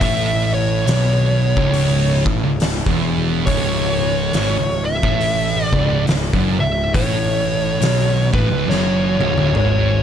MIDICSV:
0, 0, Header, 1, 5, 480
1, 0, Start_track
1, 0, Key_signature, 4, "minor"
1, 0, Tempo, 867052
1, 6, Time_signature, 4, 2, 24, 8
1, 5552, End_track
2, 0, Start_track
2, 0, Title_t, "Lead electric guitar"
2, 0, Program_c, 0, 29
2, 15, Note_on_c, 0, 76, 97
2, 296, Note_off_c, 0, 76, 0
2, 298, Note_on_c, 0, 73, 86
2, 1233, Note_off_c, 0, 73, 0
2, 1914, Note_on_c, 0, 73, 86
2, 2683, Note_off_c, 0, 73, 0
2, 2685, Note_on_c, 0, 76, 111
2, 3128, Note_off_c, 0, 76, 0
2, 3128, Note_on_c, 0, 74, 111
2, 3339, Note_off_c, 0, 74, 0
2, 3654, Note_on_c, 0, 76, 100
2, 3832, Note_off_c, 0, 76, 0
2, 3847, Note_on_c, 0, 73, 92
2, 4591, Note_off_c, 0, 73, 0
2, 4618, Note_on_c, 0, 71, 82
2, 4812, Note_off_c, 0, 71, 0
2, 4812, Note_on_c, 0, 73, 89
2, 5292, Note_off_c, 0, 73, 0
2, 5299, Note_on_c, 0, 73, 78
2, 5552, Note_off_c, 0, 73, 0
2, 5552, End_track
3, 0, Start_track
3, 0, Title_t, "Distorted electric guitar"
3, 0, Program_c, 1, 30
3, 5, Note_on_c, 1, 45, 102
3, 479, Note_off_c, 1, 45, 0
3, 481, Note_on_c, 1, 47, 101
3, 861, Note_off_c, 1, 47, 0
3, 870, Note_on_c, 1, 37, 102
3, 1245, Note_off_c, 1, 37, 0
3, 1250, Note_on_c, 1, 45, 100
3, 1342, Note_off_c, 1, 45, 0
3, 1350, Note_on_c, 1, 37, 72
3, 1532, Note_off_c, 1, 37, 0
3, 1588, Note_on_c, 1, 40, 97
3, 1918, Note_off_c, 1, 40, 0
3, 1920, Note_on_c, 1, 37, 101
3, 2397, Note_off_c, 1, 37, 0
3, 2404, Note_on_c, 1, 44, 101
3, 2539, Note_off_c, 1, 44, 0
3, 2547, Note_on_c, 1, 37, 75
3, 2749, Note_off_c, 1, 37, 0
3, 2786, Note_on_c, 1, 45, 99
3, 3163, Note_off_c, 1, 45, 0
3, 3173, Note_on_c, 1, 37, 110
3, 3357, Note_off_c, 1, 37, 0
3, 3364, Note_on_c, 1, 37, 68
3, 3507, Note_off_c, 1, 37, 0
3, 3510, Note_on_c, 1, 42, 106
3, 3644, Note_off_c, 1, 42, 0
3, 3654, Note_on_c, 1, 37, 69
3, 3807, Note_off_c, 1, 37, 0
3, 3848, Note_on_c, 1, 45, 95
3, 4320, Note_off_c, 1, 45, 0
3, 4328, Note_on_c, 1, 47, 107
3, 4605, Note_off_c, 1, 47, 0
3, 4618, Note_on_c, 1, 45, 109
3, 4705, Note_off_c, 1, 45, 0
3, 4716, Note_on_c, 1, 37, 105
3, 4802, Note_off_c, 1, 37, 0
3, 4812, Note_on_c, 1, 42, 103
3, 5086, Note_off_c, 1, 42, 0
3, 5099, Note_on_c, 1, 37, 95
3, 5185, Note_off_c, 1, 37, 0
3, 5191, Note_on_c, 1, 38, 98
3, 5279, Note_off_c, 1, 38, 0
3, 5287, Note_on_c, 1, 44, 101
3, 5552, Note_off_c, 1, 44, 0
3, 5552, End_track
4, 0, Start_track
4, 0, Title_t, "Picked electric bass"
4, 0, Program_c, 2, 34
4, 6, Note_on_c, 2, 33, 90
4, 464, Note_off_c, 2, 33, 0
4, 485, Note_on_c, 2, 35, 94
4, 847, Note_off_c, 2, 35, 0
4, 867, Note_on_c, 2, 25, 97
4, 1230, Note_off_c, 2, 25, 0
4, 1252, Note_on_c, 2, 33, 106
4, 1339, Note_off_c, 2, 33, 0
4, 1342, Note_on_c, 2, 25, 85
4, 1569, Note_off_c, 2, 25, 0
4, 1588, Note_on_c, 2, 28, 84
4, 1902, Note_off_c, 2, 28, 0
4, 1921, Note_on_c, 2, 25, 96
4, 2381, Note_off_c, 2, 25, 0
4, 2400, Note_on_c, 2, 32, 93
4, 2536, Note_off_c, 2, 32, 0
4, 2541, Note_on_c, 2, 25, 84
4, 2768, Note_off_c, 2, 25, 0
4, 2788, Note_on_c, 2, 33, 95
4, 3150, Note_off_c, 2, 33, 0
4, 3172, Note_on_c, 2, 25, 92
4, 3350, Note_off_c, 2, 25, 0
4, 3360, Note_on_c, 2, 25, 83
4, 3496, Note_off_c, 2, 25, 0
4, 3507, Note_on_c, 2, 30, 90
4, 3641, Note_off_c, 2, 30, 0
4, 3650, Note_on_c, 2, 25, 77
4, 3830, Note_off_c, 2, 25, 0
4, 3843, Note_on_c, 2, 33, 100
4, 4301, Note_off_c, 2, 33, 0
4, 4323, Note_on_c, 2, 35, 92
4, 4591, Note_off_c, 2, 35, 0
4, 4613, Note_on_c, 2, 33, 90
4, 4700, Note_off_c, 2, 33, 0
4, 4703, Note_on_c, 2, 25, 94
4, 4795, Note_off_c, 2, 25, 0
4, 4802, Note_on_c, 2, 30, 91
4, 5070, Note_off_c, 2, 30, 0
4, 5092, Note_on_c, 2, 25, 100
4, 5181, Note_off_c, 2, 25, 0
4, 5184, Note_on_c, 2, 26, 97
4, 5275, Note_off_c, 2, 26, 0
4, 5286, Note_on_c, 2, 32, 97
4, 5552, Note_off_c, 2, 32, 0
4, 5552, End_track
5, 0, Start_track
5, 0, Title_t, "Drums"
5, 6, Note_on_c, 9, 46, 65
5, 7, Note_on_c, 9, 36, 106
5, 62, Note_off_c, 9, 36, 0
5, 62, Note_off_c, 9, 46, 0
5, 483, Note_on_c, 9, 46, 64
5, 493, Note_on_c, 9, 38, 109
5, 538, Note_off_c, 9, 46, 0
5, 549, Note_off_c, 9, 38, 0
5, 868, Note_on_c, 9, 36, 113
5, 924, Note_off_c, 9, 36, 0
5, 960, Note_on_c, 9, 46, 59
5, 1016, Note_off_c, 9, 46, 0
5, 1250, Note_on_c, 9, 36, 111
5, 1306, Note_off_c, 9, 36, 0
5, 1440, Note_on_c, 9, 46, 62
5, 1450, Note_on_c, 9, 38, 114
5, 1495, Note_off_c, 9, 46, 0
5, 1505, Note_off_c, 9, 38, 0
5, 1586, Note_on_c, 9, 36, 104
5, 1641, Note_off_c, 9, 36, 0
5, 1919, Note_on_c, 9, 46, 62
5, 1922, Note_on_c, 9, 36, 107
5, 1974, Note_off_c, 9, 46, 0
5, 1977, Note_off_c, 9, 36, 0
5, 2398, Note_on_c, 9, 46, 55
5, 2409, Note_on_c, 9, 38, 113
5, 2454, Note_off_c, 9, 46, 0
5, 2464, Note_off_c, 9, 38, 0
5, 2786, Note_on_c, 9, 36, 110
5, 2842, Note_off_c, 9, 36, 0
5, 2882, Note_on_c, 9, 46, 56
5, 2938, Note_off_c, 9, 46, 0
5, 3170, Note_on_c, 9, 36, 111
5, 3226, Note_off_c, 9, 36, 0
5, 3361, Note_on_c, 9, 46, 54
5, 3371, Note_on_c, 9, 38, 115
5, 3416, Note_off_c, 9, 46, 0
5, 3427, Note_off_c, 9, 38, 0
5, 3507, Note_on_c, 9, 36, 104
5, 3562, Note_off_c, 9, 36, 0
5, 3845, Note_on_c, 9, 36, 110
5, 3845, Note_on_c, 9, 46, 63
5, 3900, Note_off_c, 9, 36, 0
5, 3900, Note_off_c, 9, 46, 0
5, 4327, Note_on_c, 9, 46, 61
5, 4337, Note_on_c, 9, 38, 116
5, 4382, Note_off_c, 9, 46, 0
5, 4393, Note_off_c, 9, 38, 0
5, 4615, Note_on_c, 9, 36, 111
5, 4670, Note_off_c, 9, 36, 0
5, 4818, Note_on_c, 9, 38, 65
5, 4873, Note_off_c, 9, 38, 0
5, 5096, Note_on_c, 9, 48, 78
5, 5152, Note_off_c, 9, 48, 0
5, 5190, Note_on_c, 9, 48, 66
5, 5246, Note_off_c, 9, 48, 0
5, 5287, Note_on_c, 9, 47, 87
5, 5342, Note_off_c, 9, 47, 0
5, 5552, End_track
0, 0, End_of_file